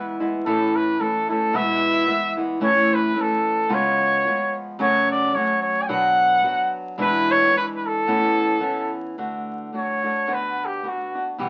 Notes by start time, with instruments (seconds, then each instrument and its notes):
Already playing: nylon-string guitar E3 G#3 B3 E4, trumpet B4
0.20 nylon-string guitar E3 G#3 B3 E4
0.46 nylon-string guitar A2 E3 A3 C#4 E4, trumpet A4
0.76 trumpet B4
0.99 nylon-string guitar E3 A3 C#4 E4, trumpet A4
1.29 nylon-string guitar A3 C#4 E4, trumpet A4
1.53 nylon-string guitar E2 B2 E3 G#3 B3 E4, trumpet E5
2.07 nylon-string guitar E3 G#3 B3 E4
2.37 nylon-string guitar E3 G#3 B3 E4
2.60 nylon-string guitar A2 E3 A3 C#4 E4, trumpet C#5
2.94 trumpet B4
3.14 nylon-string guitar E3 A3 C#4 E4
3.21 trumpet A4
3.69 nylon-string guitar C#3 F3 G#3 B3 F4
3.74 trumpet C#5
4.26 nylon-string guitar F3 G#3 B3 F4
4.79 nylon-string guitar F#2 C#3 F#3 A3 C#4 F#4, trumpet C#5
5.11 trumpet D5
5.34 nylon-string guitar F#3 A3 C#4 F#4, trumpet C#5
5.62 trumpet C#5
5.82 trumpet G#5
5.88 nylon-string guitar B2 F#3 B3 D4 F#4, trumpet F#5
6.43 nylon-string guitar F#3 B3 D4 F#4
6.98 nylon-string guitar E2 B2 E3 G#3 D4 E4, trumpet B4
7.31 trumpet C#5
7.50 nylon-string guitar E3 G#3 D4 E4
7.57 trumpet B4
7.76 trumpet B4
7.86 trumpet A4
8.06 nylon-string guitar A2 E3 B3 C#4 E4
8.60 nylon-string guitar E3 B3 C#4 E4
9.18 nylon-string guitar D3 A3 D4 F#4
9.73 nylon-string guitar D3 A3 D4 F#4, trumpet C#5
10.03 nylon-string guitar A3 D4 F#4
10.27 nylon-string guitar D3 B3 D4 F#4
10.33 trumpet B4
10.65 trumpet G4
10.83 nylon-string guitar D3 B3 D4 F#4
10.88 trumpet F#4
11.15 nylon-string guitar B3 D4 F#4
11.38 nylon-string guitar E2 B2 E3 G3 B3 G4